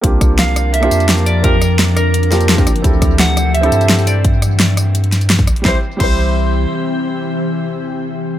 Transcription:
<<
  \new Staff \with { instrumentName = "Clean electric guitar" } { \time 4/4 \key c \mixolydian \tempo 4 = 171 r4 f''4 e''4 r8 d''8 | bes'4 r8 bes'2 r8 | r4 fis''4 e''4 r8 d''8 | r1 |
c''8 r8 c''2.~ | c''1 | }
  \new Staff \with { instrumentName = "Felt piano" } { \time 4/4 \key c \mixolydian <bes c' d' f' g'>2~ <bes c' d' f' g'>16 <bes c' d' f' g'>4.~ <bes c' d' f' g'>16 | <bes c' d' f' g'>16 r2 r16 <bes c' d' f' g'>8. <bes c' d' f' g'>16 r8 | <c' d' e' g' a'>2~ <c' d' e' g' a'>16 <c' d' e' g' a'>4.~ <c' d' e' g' a'>16 | r1 |
<g c' e' g' c''>16 r8. <g c' e' g' c''>2.~ | <g c' e' g' c''>1 | }
  \new Staff \with { instrumentName = "Ambient pad" } { \time 4/4 \key c \mixolydian <f d' bes'>1~ | <f d' bes'>1 | <e c' g'>1 | r1 |
<e c' g'>1~ | <e c' g'>1 | }
  \new Staff \with { instrumentName = "Sub bass" } { \clef bass \time 4/4 \key c \mixolydian c,2~ c,8 f,4.~ | f,2.~ f,8 g,,8 | d,2~ d,8 g,4.~ | g,2.~ g,8 a,,8 |
c,8 r8 c,2 r4 | r1 | }
  \new DrumStaff \with { instrumentName = "Drums" } \drummode { \time 4/4 <hh bd>8 <hh bd ss tamb>8 <hh sn tamb>8 <hh ss tamb>8 hh16 <hh ss>16 <hh tamb>16 <hh tamb>16 <hh sn>16 tamb16 <hh tamb>8 | <hh bd>8 <hh ss tamb>8 <hh sn tamb>8 <hh ss tamb>8 hh16 hh16 <hh sn tamb>16 <hh tamb>16 <hh sn>16 <bd tamb>16 <hh ss tamb>16 hh16 | <hh bd>8 <hh bd ss tamb>8 <hh sn tamb>8 <hh ss tamb>8 hh16 <hh ss>16 <hh tamb>16 <hh tamb>16 <hh sn>16 tamb16 <hh tamb>8 | <hh bd>8 <hh ss tamb>8 <hh sn tamb>8 <hh ss tamb>8 hh16 hh16 <hh sn tamb>16 <hh tamb>16 <hh sn>16 <bd tamb>16 <hh ss tamb>16 hh16 |
<bd sn>4 <cymc bd>4 r4 r4 | r4 r4 r4 r4 | }
>>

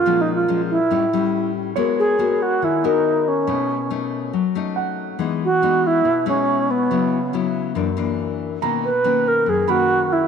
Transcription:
<<
  \new Staff \with { instrumentName = "Grand piano" } { \time 4/4 \key ces \major \tempo 4 = 140 r1 | des''2 aes''2 | r2. fis''4~ | fis''8 r2. r8 |
r1 | ais''2 r8 b''4. | }
  \new Staff \with { instrumentName = "Alto flute" } { \time 4/4 \key ces \major \tuplet 3/2 { f'8 ees'8 f'8~ } f'8 fes'2 r8 | r8 aes'4 ges'8 fes'8 ees'4 des'8~ | des'4 r2. | r8 ges'4 e'4 des'4 b8~ |
b4 r2. | r8 b'4 ais'8 aes'8 fis'4 fes'8 | }
  \new Staff \with { instrumentName = "Nylon-string guitar" } { \time 4/4 \key ces \major << { <f aes des'>4 <f aes des'>8 r8 <g cis' dis'>8 <g cis'>4. | <ces' ges' bes'>4 <ces' ges' bes'>4. <ces' ges' bes'>4. | <a cis' dis'>8 r8 <a cis' dis'>4 r8 <a cis' dis'>4. | <gis b dis'>8 r8 <gis b dis'>4 r8 <gis b dis'>4. |
<ges ces' fes'>8 r8 <ges ces' fes'>4 <fes bes d'>8 <fes bes d'>4. | <dis ais cis'>8 r8 <dis ais cis'>4. <dis ais cis'>4. | } \\ { bes,2 a,2 | aes2 ees2 | b,2 fis2 | e2 b,2 |
des2 ges,2 | b,2 fis,2 | } >> }
>>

